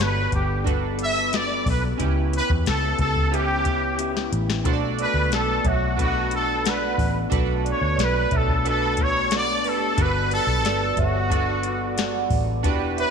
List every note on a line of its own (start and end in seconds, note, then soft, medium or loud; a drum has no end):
0.00 0.26 G1 loud
0.00 0.65 G3 loud
0.00 0.66 B3 loud
0.00 0.47 D4 medium
0.00 0.48 F#4 medium
0.00 0.48 A4 medium
0.00 0.67 A4 loud
0.00 0.49 B4 loud
0.00 0.34 B4 loud
0.00 snare loud
0.00 closed hi-hat medium
0.32 1.62 G1 loud
0.32 0.65 G4 medium
0.32 kick loud
0.32 closed hi-hat medium
0.64 1.32 G3 medium
0.64 1.33 B3 medium
0.64 1.80 D4 medium
0.64 1.81 F#4 medium
0.64 1.33 F#4 medium
0.64 1.81 A4 medium
0.64 1.82 B4 medium
0.64 kick loud
0.64 closed hi-hat medium
0.68 1.33 A4 medium
0.99 closed hi-hat medium
1.03 1.37 E5 loud
1.33 2.01 G3 medium
1.33 1.99 B3 medium
1.33 2.00 F#4 medium
1.33 2.00 A4 medium
1.33 1.67 D5 loud
1.33 snare loud
1.33 closed hi-hat medium
1.66 1.92 B1 medium
1.66 1.84 B4 medium
1.66 kick loud
1.66 open hi-hat medium
1.97 2.40 C#2 loud
1.97 3.31 C#3 medium
1.97 3.33 B3 medium
1.97 3.14 C#4 medium
1.97 3.14 E4 medium
1.97 3.32 E4 medium
1.97 3.15 G4 medium
1.97 3.15 B4 medium
1.97 kick loud
1.97 closed hi-hat medium
2.03 3.33 G4 medium
2.33 2.51 B4 loud
2.33 closed hi-hat medium
2.50 2.68 E2 loud
2.50 kick medium
2.66 2.93 C#2 medium
2.66 2.98 A4 loud
2.66 snare loud
2.66 closed hi-hat medium
2.99 4.28 C#2 loud
2.99 3.36 A4 medium
2.99 kick loud
2.99 closed hi-hat medium
3.16 kick loud
3.31 3.97 C#3 medium
3.31 3.99 B3 medium
3.31 4.47 C#4 medium
3.31 4.47 E4 medium
3.31 3.99 E4 medium
3.31 4.48 G4 medium
3.31 4.00 G4 medium
3.31 4.33 G4 medium
3.31 4.48 B4 medium
3.31 closed hi-hat medium
3.65 kick loud
3.65 closed hi-hat medium
3.98 4.64 C#3 medium
3.98 4.65 B3 medium
3.98 4.66 E4 medium
3.98 4.67 G4 medium
3.98 closed hi-hat loud
4.17 snare medium
4.33 4.65 A1 medium
4.33 closed hi-hat medium
4.50 snare loud
4.64 5.05 B1 loud
4.64 5.97 B2 medium
4.64 5.99 A3 loud
4.64 5.80 D4 medium
4.64 6.00 D4 medium
4.64 5.81 F#4 medium
4.64 5.81 A4 medium
4.64 4.73 C5 medium
4.64 kick loud
4.64 closed hi-hat medium
4.69 6.01 F#4 loud
4.73 5.85 D5 loud
4.99 5.15 B4 medium
4.99 5.31 B4 loud
4.99 5.15 D5 medium
4.99 closed hi-hat medium
5.14 5.31 D2 medium
5.31 5.58 B1 loud
5.31 5.69 A4 loud
5.31 5.64 B4 medium
5.31 5.63 D5 medium
5.31 snare loud
5.31 closed hi-hat medium
5.65 6.94 B1 loud
5.65 6.00 F#4 medium
5.65 5.81 C#5 medium
5.65 5.81 E5 medium
5.65 kick loud
5.65 closed hi-hat medium
5.96 6.64 B2 medium
5.96 6.65 A3 medium
5.96 7.13 D4 medium
5.96 7.13 F#4 medium
5.96 7.13 A4 medium
5.96 7.14 B4 medium
5.96 kick loud
5.96 closed hi-hat medium
6.00 6.66 D4 medium
6.00 6.30 F#4 loud
6.00 6.67 F#4 medium
6.31 6.71 A4 loud
6.31 closed hi-hat medium
6.65 7.30 B2 medium
6.65 7.33 A3 medium
6.65 7.34 D4 medium
6.65 7.35 F#4 medium
6.65 7.12 D5 medium
6.65 7.12 F#5 medium
6.65 snare loud
6.65 closed hi-hat loud
6.69 7.17 B4 medium
6.98 7.25 A1 medium
6.98 kick loud
6.98 open hi-hat medium
7.30 7.72 B1 loud
7.30 8.64 B2 medium
7.30 8.66 A3 loud
7.30 8.46 D4 medium
7.30 8.47 F#4 medium
7.30 8.47 A4 medium
7.30 8.47 B4 loud
7.30 kick loud
7.30 closed hi-hat loud
7.34 8.67 D4 loud
7.34 8.68 F#4 loud
7.65 7.81 B4 medium
7.65 7.81 D5 medium
7.65 closed hi-hat medium
7.71 8.06 C#5 medium
7.82 7.95 D2 loud
7.96 8.25 B1 loud
7.96 8.29 B4 medium
7.96 8.29 D5 medium
7.96 snare loud
7.96 closed hi-hat medium
8.04 8.38 B4 loud
8.31 9.65 B1 medium
8.31 8.47 E5 medium
8.31 kick loud
8.31 closed hi-hat medium
8.36 8.67 A4 medium
8.48 kick medium
8.64 9.30 B2 medium
8.64 9.31 A3 medium
8.64 9.80 D4 medium
8.64 9.33 D4 medium
8.64 9.80 F#4 medium
8.64 9.33 F#4 medium
8.64 9.81 A4 medium
8.64 9.81 B4 medium
8.64 closed hi-hat medium
8.69 9.04 A4 loud
8.97 kick loud
8.97 closed hi-hat medium
9.02 9.34 C#5 loud
9.31 9.98 B2 medium
9.31 9.98 A3 medium
9.31 9.99 D4 medium
9.31 9.99 F#4 medium
9.31 9.47 B4 medium
9.31 9.47 D5 medium
9.31 snare loud
9.31 closed hi-hat loud
9.37 9.70 D5 loud
9.64 9.92 F#1 medium
9.64 9.81 G4 medium
9.64 9.81 B4 medium
9.64 open hi-hat medium
9.68 10.03 A4 loud
9.96 10.38 G1 loud
9.96 11.30 G3 medium
9.96 11.31 B3 medium
9.96 11.13 D4 medium
9.96 11.13 F#4 medium
9.96 11.31 F#4 medium
9.96 11.14 A4 medium
9.96 10.05 A#4 medium
9.96 kick loud
9.96 closed hi-hat loud
10.01 11.32 A4 loud
10.01 10.33 B4 loud
10.06 11.17 B4 medium
10.31 10.95 A4 loud
10.31 10.48 B4 medium
10.31 10.48 D5 medium
10.31 closed hi-hat medium
10.47 10.64 B1 medium
10.64 10.91 G1 loud
10.64 10.97 B4 medium
10.64 10.97 D5 loud
10.64 snare loud
10.64 closed hi-hat medium
10.97 12.27 G1 loud
10.97 12.28 F#4 medium
10.97 11.14 C#5 medium
10.97 11.13 E5 medium
10.97 kick medium
10.97 closed hi-hat medium
11.30 11.96 G3 medium
11.30 11.97 B3 medium
11.30 12.46 D4 medium
11.30 12.46 F#4 medium
11.30 11.97 F#4 medium
11.30 12.47 A4 medium
11.30 11.98 A4 medium
11.30 12.47 D5 medium
11.30 kick loud
11.30 closed hi-hat medium
11.63 closed hi-hat medium
11.96 12.63 G3 medium
11.96 12.64 B3 medium
11.96 12.65 F#4 medium
11.96 12.65 A4 medium
11.96 12.45 D5 medium
11.96 12.44 F#5 medium
11.96 snare loud
11.96 closed hi-hat loud
12.30 12.64 A1 loud
12.30 kick loud
12.30 open hi-hat medium
12.63 13.04 E1 loud
12.63 13.11 E3 loud
12.63 13.11 B3 medium
12.63 13.11 D4 medium
12.63 13.11 D4 loud
12.63 13.11 F#4 medium
12.63 13.11 G4 medium
12.63 13.11 B4 loud
12.63 kick loud
12.63 closed hi-hat medium
12.68 13.11 G4 loud
12.97 13.11 B4 loud
12.97 13.11 C#5 medium
12.97 13.11 E5 medium
12.97 closed hi-hat medium